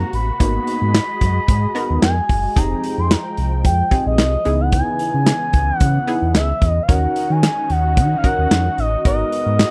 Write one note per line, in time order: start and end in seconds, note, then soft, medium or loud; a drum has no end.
0.00 0.38 C3 medium
0.00 0.38 A#3 medium
0.00 2.52 F#4 medium
0.00 0.10 A#5 loud
0.13 0.31 A1 medium
0.13 1.99 B5 loud
0.13 closed hi-hat medium
0.40 0.59 G#1 loud
0.40 2.54 G#3 medium
0.40 0.93 A#3 medium
0.40 0.93 B3 medium
0.40 0.93 D#4 medium
0.40 0.93 F#4 medium
0.40 2.54 G#4 medium
0.40 2.54 D#5 medium
0.40 kick loud
0.40 closed hi-hat loud
0.67 closed hi-hat medium
0.81 1.00 G#2 loud
0.94 snare loud
0.94 clap loud
0.94 closed hi-hat loud
1.21 1.40 F#2 loud
1.21 kick medium
1.21 closed hi-hat medium
1.48 1.67 G#2 loud
1.48 kick loud
1.48 closed hi-hat medium
1.75 2.15 B3 loud
1.75 2.15 D#4 medium
1.75 2.15 F#4 medium
1.75 2.16 A#4 loud
1.75 closed hi-hat medium
1.90 1.99 D#2 loud
2.02 2.21 F2 medium
2.02 2.59 G#5 loud
2.02 snare loud
2.02 clap loud
2.02 closed hi-hat medium
2.29 2.48 F#1 loud
2.29 kick loud
2.29 open hi-hat medium
2.56 2.75 F1 loud
2.56 4.44 F3 medium
2.56 4.44 G#3 loud
2.56 3.09 C4 medium
2.56 3.09 D#4 medium
2.56 3.09 G4 medium
2.56 3.09 G#4 loud
2.56 4.44 G5 medium
2.56 3.01 A#5 loud
2.56 kick loud
2.56 closed hi-hat loud
2.84 closed hi-hat medium
2.98 3.16 F2 medium
2.98 3.13 C6 loud
3.11 3.65 A#5 loud
3.11 snare loud
3.11 clap loud
3.11 closed hi-hat medium
3.37 3.66 C2 loud
3.37 closed hi-hat medium
3.65 3.83 F2 loud
3.65 4.04 G5 loud
3.65 kick loud
3.65 closed hi-hat loud
3.91 4.31 C4 medium
3.91 4.32 D#4 medium
3.91 4.32 G4 medium
3.91 4.32 G#4 medium
3.91 kick loud
3.91 closed hi-hat medium
4.06 4.20 A#1 loud
4.06 4.62 D#5 loud
4.18 4.37 C2 medium
4.18 snare loud
4.18 clap loud
4.18 closed hi-hat medium
4.45 4.83 C#2 loud
4.45 6.86 C#3 medium
4.45 6.87 E3 medium
4.45 5.32 B3 medium
4.45 6.86 B3 medium
4.45 5.32 D#4 medium
4.45 5.32 E4 medium
4.45 5.33 G#4 medium
4.45 closed hi-hat medium
4.61 4.73 F#5 loud
4.72 5.79 G#5 loud
4.72 kick loud
4.72 closed hi-hat medium
4.99 closed hi-hat medium
5.14 5.32 C#3 medium
5.26 snare loud
5.26 clap loud
5.26 closed hi-hat loud
5.53 5.72 C#2 loud
5.53 kick medium
5.53 closed hi-hat medium
5.79 5.99 C#3 loud
5.79 6.31 F#5 loud
5.79 kick loud
5.79 closed hi-hat loud
6.07 6.48 B3 loud
6.07 6.48 D#4 medium
6.07 6.48 E4 loud
6.07 6.48 G#4 loud
6.07 closed hi-hat medium
6.22 6.36 E2 medium
6.35 6.53 C#2 loud
6.35 6.68 E5 loud
6.35 snare loud
6.35 clap loud
6.35 closed hi-hat medium
6.62 6.80 E2 medium
6.62 kick loud
6.62 closed hi-hat medium
6.68 6.85 D#5 loud
6.83 6.91 F5 medium
6.88 7.07 D#2 loud
6.88 9.03 D#3 medium
6.88 7.41 C#4 medium
6.88 9.03 C#4 medium
6.88 7.41 D#4 medium
6.88 9.03 D#4 medium
6.88 7.42 F#4 medium
6.88 9.71 F#4 medium
6.88 7.42 A#4 medium
6.88 7.33 F#5 medium
6.88 kick loud
6.88 closed hi-hat loud
7.16 closed hi-hat medium
7.30 7.49 D#3 medium
7.30 7.72 G#5 loud
7.43 snare loud
7.43 clap medium
7.43 closed hi-hat medium
7.70 7.99 D#2 loud
7.70 8.18 F#5 loud
7.70 closed hi-hat medium
7.97 8.16 D#3 loud
7.97 kick loud
7.97 closed hi-hat loud
8.18 8.27 F5 medium
8.23 8.64 C#4 medium
8.23 8.64 D#4 medium
8.23 8.64 F#4 medium
8.23 8.64 A#4 loud
8.23 8.81 F#5 loud
8.23 kick loud
8.23 closed hi-hat medium
8.38 8.47 D#2 loud
8.51 8.69 F2 loud
8.51 snare loud
8.51 clap loud
8.51 closed hi-hat medium
8.78 8.96 A1 loud
8.78 9.06 D#5 medium
8.78 closed hi-hat medium
9.05 9.24 G#1 loud
9.05 9.71 G#3 medium
9.05 9.58 B3 medium
9.05 9.71 B3 medium
9.05 9.58 D#4 medium
9.05 9.58 F#4 medium
9.05 9.71 A#4 medium
9.05 9.58 A#4 medium
9.05 9.71 D#5 medium
9.05 kick loud
9.05 closed hi-hat medium
9.32 closed hi-hat medium
9.46 9.65 G#2 loud
9.59 snare loud
9.59 clap loud
9.59 closed hi-hat medium